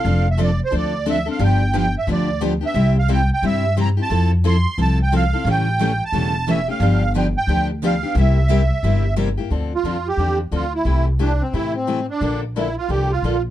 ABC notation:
X:1
M:4/4
L:1/16
Q:"Swing" 1/4=178
K:Cmix
V:1 name="Accordion"
f2 e2 d2 c2 d4 e2 f2 | g4 g2 e2 d4 z2 e2- | e2 f2 g2 g2 e4 b2 a2- | a2 z2 c'4 a2 g2 f4 |
g6 a6 e2 f2- | f4 g2 g4 z2 f4 | e12 z4 | [K:Dm] z2 F4 G4 z2 F2 E2- |
E2 z2 D2 C2 E2 C4 D2- | D2 z2 E2 F2 G2 F4 z2 |]
V:2 name="Steel-string acoustic guitar"
[F,CDA]2 z2 [F,CDA] z3 [F,CDA]2 z2 [F,CDA] z [CDA]2 | [D,F,=B,DG]2 z2 [D,F,B,DG] z3 [D,F,B,DG]2 z2 [D,F,B,DG] z [B,DG]2 | [C,G,CEG]2 z2 [C,G,CEG] z3 [C,G,CEG]2 z2 [C,G,CEG] z [CEG]2 | [F,CEA]2 z2 [F,CEA] z3 [F,CEA]2 z2 [F,CEA] z [CEA]2 |
[^C,E,A,^CG]2 z2 [C,E,A,CG] z3 [C,E,A,CG]2 z2 [C,E,A,CG] z [A,CG]2 | [D,F,=B,DG]2 z2 [D,F,B,DG] z3 [D,F,B,DG]2 z2 [D,F,B,DG] z [B,DG]2 | [C,G,B,EG]2 z2 [C,G,B,EG] z3 [C,G,B,EG]2 z2 [C,G,B,EG] z [B,EG]2 | [K:Dm] [D,F,CDA]2 z2 [D,F,CDA] z3 [D,F,CDA]2 z2 [D,F,CDA] z3 |
[C,E,A,EG]2 z2 [C,E,A,EG] z3 [C,E,A,EG]2 z2 [C,E,A,EG] z3 | [D,F,B,DA]2 z2 [D,F,B,DA] z3 [D,F,B,DA]2 z2 [D,F,B,DA] z3 |]
V:3 name="Steel-string acoustic guitar"
[F,CDA]2 z2 [F,CDA] z3 [F,CDA]2 z2 [F,CDA] z3 | [D,F,=B,DG]2 z2 [D,F,B,DG] z3 [D,F,B,DG]2 z2 [D,F,B,DG] z3 | [C,G,CEG]2 z2 [C,G,CEG] z3 [C,G,CEG]2 z2 [C,G,CEG] z3 | [F,CEA]2 z2 [F,CEA] z3 [F,CEA]2 z2 [F,CEA] z3 |
[E,G,^CEA]2 z2 [E,G,CEA] z3 [E,G,CEA]2 z2 [E,G,CEA] z3 | [D,F,=B,DG]2 z2 [D,F,B,DG] z3 [D,F,B,DG]2 z2 [D,F,B,DG] z3 | [C,G,B,EG]2 z2 [C,G,B,EG] z3 [C,G,B,EG]2 z2 [C,G,B,EG] z3 | [K:Dm] z16 |
z16 | z16 |]
V:4 name="Upright bass" clef=bass
F,,,8 D,,8 | G,,,8 D,,8 | C,,8 G,,8 | F,,8 C,,8 |
A,,,8 E,,,8 | G,,,8 D,,8 | C,,8 G,,,8 | [K:Dm] D,,4 F,,4 E,,4 D,,4 |
C,,8 A,,8 | B,,,8 C,,4 B,,,4 |]